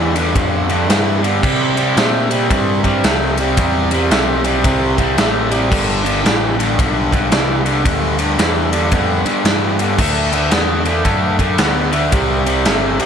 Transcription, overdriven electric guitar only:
0.00 0.13 G2 medium
0.00 0.13 E3 medium
0.15 0.33 G2 medium
0.15 0.34 D3 medium
0.34 0.66 G2 medium
0.34 0.66 D3 medium
0.69 0.87 G2 medium
0.69 0.87 D3 medium
0.89 1.20 G2 medium
0.89 1.20 E3 medium
1.22 1.41 G2 medium
1.22 1.41 D3 medium
1.42 1.73 C3 medium
1.42 1.73 G3 medium
1.76 1.94 C3 medium
1.76 1.95 G3 medium
1.96 2.27 C3 medium
1.96 2.27 A3 loud
2.30 2.48 C3 medium
2.30 2.48 G3 medium
2.50 2.81 C3 medium
2.50 2.81 G3 medium
2.84 3.02 C3 medium
2.84 3.02 G3 medium
3.04 3.35 C3 medium
3.04 3.35 A3 medium
3.38 3.56 C3 medium
3.38 3.56 G3 medium
3.58 3.88 C3 medium
3.58 3.88 G3 medium
3.92 4.10 C3 medium
3.92 4.10 G3 medium
4.11 4.41 C3 medium
4.11 4.42 A3 medium
4.44 4.62 C3 medium
4.44 4.62 G3 medium
4.64 4.95 C3 medium
4.64 4.95 G3 medium
4.97 5.15 C3 medium
4.97 5.16 G3 medium
5.17 5.48 C3 medium
5.17 5.48 A3 medium
5.50 5.68 C3 medium
5.50 5.69 G3 medium
5.70 6.01 G2 medium
5.70 6.01 D3 medium
6.04 6.22 G2 medium
6.04 6.22 D3 medium
6.24 6.55 G2 medium
6.24 6.55 E3 loud
6.59 6.76 G2 medium
6.59 6.76 D3 medium
6.79 7.09 G2 medium
6.79 7.09 D3 medium
7.12 7.29 G2 medium
7.12 7.30 D3 loud
7.31 7.62 G2 medium
7.31 7.62 E3 loud
7.65 7.83 G2 medium
7.65 7.83 D3 medium
7.84 8.15 G2 medium
7.84 8.15 D3 medium
8.18 8.36 G2 medium
8.18 8.36 D3 medium
8.37 8.68 G2 medium
8.37 8.69 E3 medium
8.72 8.90 G2 medium
8.72 8.90 D3 medium
8.93 9.22 G2 medium
8.93 9.23 D3 loud
9.25 9.43 G2 medium
9.25 9.43 D3 medium
9.46 9.76 G2 medium
9.46 9.76 E3 medium
9.79 9.96 G2 medium
9.79 9.97 D3 medium
9.99 10.29 D3 medium
9.99 10.29 A3 loud
10.32 10.50 D3 medium
10.32 10.50 A3 medium
10.51 10.82 D3 medium
10.51 10.82 B3 loud
10.87 11.03 D3 medium
10.87 11.04 A3 medium
11.04 11.35 D3 medium
11.04 11.35 A3 medium
11.39 11.57 D3 medium
11.39 11.57 A3 medium
11.59 11.89 D3 medium
11.59 11.89 B3 medium
11.91 12.09 D3 medium
11.91 12.10 A3 medium
12.12 12.42 C3 medium
12.12 12.42 G3 medium
12.46 12.63 C3 medium
12.46 12.64 G3 medium
12.66 12.96 C3 medium
12.66 12.96 A3 medium
12.99 13.06 C3 medium
12.99 13.06 G3 medium

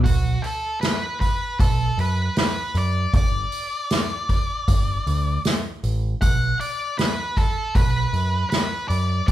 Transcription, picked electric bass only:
0.05 0.36 B1 medium
1.60 1.90 B1 medium
1.97 2.28 F#2 medium
2.74 3.05 F#2 medium
3.13 3.44 G1 medium
4.68 4.98 G1 medium
5.07 5.37 D2 medium
5.83 6.14 A1 medium
6.22 6.52 B1 medium
7.75 8.06 B1 loud
8.13 8.44 F#2 medium
8.90 9.20 F#2 medium
9.28 9.32 G1 medium

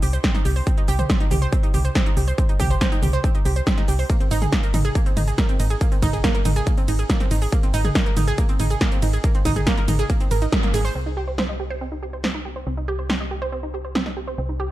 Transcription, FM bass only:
0.02 0.19 C2 medium
0.45 0.62 C2 loud
0.88 1.04 C2 loud
1.31 1.47 C2 medium
1.74 1.90 C2 medium
2.17 2.33 C2 loud
2.60 2.76 C2 loud
3.02 3.19 C2 loud
3.45 3.61 C2 loud
3.88 4.04 C2 medium
4.31 4.47 G#1 loud
4.74 4.90 G#1 loud
5.17 5.33 G#1 medium
5.60 5.76 G#1 loud
6.03 6.19 G#1 loud
6.45 6.62 G#1 loud
6.88 7.04 G#1 medium
7.31 7.47 G#1 loud
7.74 7.90 G#1 loud
8.17 8.33 G#1 loud
8.60 8.76 G#1 medium
9.03 9.19 G#1 loud
9.45 9.62 G#1 loud
9.88 10.04 G#1 medium
10.31 10.47 G#1 loud
10.74 10.90 G#1 loud
10.95 12.65 C2 medium
12.67 14.36 C2 medium
14.38 14.71 C2 medium

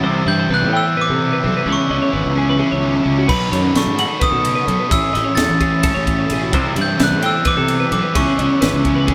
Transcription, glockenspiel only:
0.28 0.52 G6 medium
0.54 0.76 F#6 loud
0.77 0.97 E6 medium
1.01 1.71 D6 loud
1.72 3.04 C#6 medium
3.29 3.72 B5 medium
3.77 4.24 C#6 medium
4.23 4.93 D#6 medium
4.92 5.39 E6 loud
5.35 6.01 A6 loud
6.81 7.02 G6 medium
7.03 7.25 F#6 loud
7.26 7.46 E6 medium
7.47 7.91 D6 loud
7.93 8.16 D6 medium
8.16 9.14 C#6 medium

